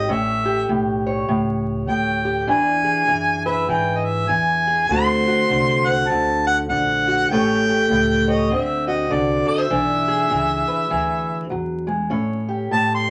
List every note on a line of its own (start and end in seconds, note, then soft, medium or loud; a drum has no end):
0.00 0.13 D#5 medium
0.09 0.68 A1 medium
0.09 0.68 A2 medium
0.09 2.47 C#4 medium
0.09 0.70 E5 medium
0.45 2.24 G4 medium
0.69 1.28 B1 medium
0.69 1.27 A2 medium
1.07 2.47 C#5 medium
1.28 1.87 C#2 medium
1.28 1.87 A2 medium
1.87 2.47 D2 medium
1.87 2.49 A2 medium
1.87 2.45 G5 medium
2.25 2.46 G4 medium
2.47 2.84 E2 medium
2.47 3.06 E3 medium
2.47 4.86 D4 medium
2.47 3.42 G#5 medium
2.84 4.66 G#4 medium
2.84 muted upright bass stroke soft
3.08 3.68 F#2 medium
3.08 3.68 E3 medium
3.45 4.87 B4 medium
3.45 3.70 E5 medium
3.68 4.27 G#2 medium
3.68 4.28 E3 medium
3.68 3.98 G5 medium
3.97 4.06 D#5 medium
4.05 4.30 E5 medium
4.29 4.88 E2 medium
4.29 4.87 E3 medium
4.29 4.89 G#5 medium
4.67 4.87 G#4 medium
4.88 5.48 D2 medium
4.88 5.48 D3 medium
4.88 7.28 A3 medium
4.88 7.31 C4 medium
4.88 5.26 F#4 medium
4.88 5.87 C6 loud
4.92 5.86 C5 medium
5.27 7.06 F#4 medium
5.49 6.08 C2 medium
5.49 6.08 D3 medium
5.86 7.28 C5 medium
5.86 6.09 F#5 medium
6.08 6.68 D2 medium
6.08 6.68 D3 medium
6.08 6.46 A5 medium
6.47 6.57 F#5 medium
6.69 7.28 A#1 medium
6.69 7.30 D3 medium
6.69 7.31 F#5 medium
7.07 7.28 F#4 medium
7.30 7.89 A1 medium
7.30 7.90 A2 medium
7.30 8.49 A3 medium
7.30 8.49 C#4 medium
7.30 7.68 G4 medium
7.30 8.27 C#5 medium
7.30 8.30 G5 medium
7.69 8.49 G4 medium
7.90 8.49 C#2 medium
7.90 8.51 A2 medium
8.28 8.48 C#5 medium
8.28 8.52 D#5 medium
8.50 9.09 D2 medium
8.50 9.09 D3 medium
8.50 9.70 C4 medium
8.50 8.86 E5 medium
8.87 9.68 F#4 medium
8.87 9.14 D#5 medium
9.10 9.45 C2 medium
9.10 9.70 D3 medium
9.10 9.47 D5 medium
9.46 9.58 A4 medium
9.46 11.48 E5 medium
9.46 muted upright bass stroke soft
9.58 9.70 C5 soft
9.70 10.29 B1 medium
9.70 10.29 E3 medium
9.70 12.09 D4 medium
10.08 12.09 G#4 medium
10.30 10.65 C#2 medium
10.30 10.89 E3 medium
10.68 12.09 B4 medium
10.68 muted upright bass stroke soft
10.90 11.50 D2 medium
10.90 11.50 E3 medium
11.50 12.10 E2 medium
11.50 11.88 F#3 medium
11.87 12.11 G#3 medium
12.10 12.71 A2 medium
12.10 13.10 C#4 medium
12.48 13.10 G4 medium
12.71 13.10 A2 medium
12.71 12.92 A5 medium
12.95 13.10 C6 medium